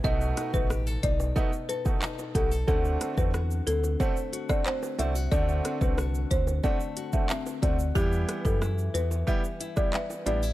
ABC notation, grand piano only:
X:1
M:4/4
L:1/16
Q:1/4=91
K:Dmix
V:1 name="Grand piano"
[A,B,^DF]3 [A,B,DF] z4 [A,B,DF] z2 [A,B,DF] z2 [A,B,DF] z | [A,CDF]3 [A,CDF] z4 [A,CDF] z2 [A,CDF] z2 [A,CDF] z | [A,CDF]3 [A,CDF] z4 [A,CDF] z2 [A,CDF] z2 [A,CDF] z | [G,B,EG]3 [G,B,EG] z4 [G,B,EG] z2 [G,B,EG] z2 [G,B,EG] z |]